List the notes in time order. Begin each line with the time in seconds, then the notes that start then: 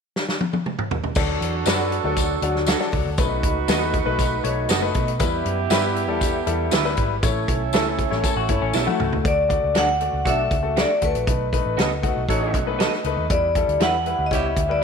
0.16 snare
0.29 snare
0.41 high tom
0.53 high tom
0.66 mid tom
0.79 mid tom
0.91 floor tom
1.04 floor tom
1.15 D2 F#3 D4 F#4 A4, kick, crash, tambourine
1.41 E2, closed hi-hat
1.66 F#2 F#3 D4 F#4 A4 B4 D5, snare, closed hi-hat, tambourine
1.92 closed hi-hat
2.04 D2 F#3 D4 A4
2.17 kick, closed hi-hat, tambourine
2.42 D2 F#3 D4 F#4, closed hi-hat
2.56 snare
2.67 D4 F#4 A4 D5, snare, closed hi-hat, tambourine
2.80 F#3 D4 A4, snare
2.92 C#2, kick, open hi-hat
3.05 D2
3.18 B1 A3 C#4 D#4 F#4 B4, kick, closed hi-hat, tambourine
3.25 D#4
3.43 C#2, kick, closed hi-hat
3.68 D#2 A3 B3 D#4 F#4 A4 B4 D#5, snare, closed hi-hat, tambourine
3.94 kick, closed hi-hat
4.05 B1 A3 D#4 B4
4.19 kick, closed hi-hat, tambourine
4.43 B1 A3 D#4 C#5, closed hi-hat
4.69 F#1 B3 F#4 A4 D#5, snare, closed hi-hat, tambourine
4.81 A3 D#4 B4
4.94 B2, kick, closed hi-hat
5.08 closed hi-hat
5.19 E2 G3 B3 E4 G4 B4, kick, closed hi-hat, tambourine
5.45 F#2, closed hi-hat
5.70 G2 G3 E4 G4 B4 E5, snare, closed hi-hat, tambourine
5.96 closed hi-hat
6.08 E2 G3 E4 A4
6.21 kick, closed hi-hat, tambourine
6.46 E2 G3 E4 A4, closed hi-hat
6.71 D2 E4 G4 B4 E5, snare, closed hi-hat, tambourine
6.85 G3 E4 B4, snare
6.97 G#1, kick, closed hi-hat
7.23 A1 A3 C#4 E4 A4 C#5, kick, closed hi-hat, tambourine
7.48 B1, kick, closed hi-hat
7.73 C#2 A3 E4 A4 C#5 E5, snare, closed hi-hat, tambourine
7.99 kick, closed hi-hat
8.10 A1 A3 E4 C#5, snare
8.24 A4, kick, closed hi-hat, tambourine
8.36 A1 F#4
8.49 G1 A3 E4 C#5, kick, closed hi-hat
8.61 A1 C#4
8.73 B1 B3 E4 A4 C#5 E5, snare, tambourine
8.86 A3 E4 F#4, high tom
9.00 C#2, mid tom
9.13 floor tom
9.24 D2 A3 F#4 D5, kick, closed hi-hat
9.48 A3 F#4 D5, kick, closed hi-hat
9.63 C#2
9.75 D2 D4 F#4 A4 D5 F#5, snare, closed hi-hat
10.00 A3 F#4 D5, closed hi-hat
10.13 C#2
10.25 B1 A3 D4 F#4 A4 D5, kick, closed hi-hat
10.29 E5
10.51 C#2, kick, closed hi-hat
10.62 A3 F#4 A4
10.77 D4 F#4 A4 D5, snare, closed hi-hat
11.01 D2 A3 F#4 A4 B4, kick, closed hi-hat
11.15 A#1, closed hi-hat
11.27 B1 A3 D#4 B4, kick, closed hi-hat
11.53 A3 D#4 B4, kick, closed hi-hat
11.66 A1
11.77 C#2 B3 F#4 A4 D#5, snare, closed hi-hat
12.02 A3 D#4 F#4, kick, closed hi-hat
12.17 B1
12.29 A1 A3 D#4 F#4 A4 C#5, kick, closed hi-hat
12.54 B1, kick, closed hi-hat
12.66 A3 D#4 B4
12.79 B3 F#4 A4 D#5, snare, closed hi-hat
12.93 snare
13.04 C#2 A3 D#4 B4, closed hi-hat
13.17 D#2
13.30 E2 G3 E4 B4 D5, kick, closed hi-hat
13.55 G3 E4 A4, kick, closed hi-hat
13.68 D2, closed hi-hat
13.80 E2 E4 G4 B4 E5 F#5, snare, closed hi-hat
14.06 G3 E4 B4, closed hi-hat
14.19 D2
14.26 D#5
14.31 C#2 G3 B3 E4 G4 C#5 E5, kick, closed hi-hat
14.56 D2, kick, closed hi-hat
14.69 G3 E4 B4 D5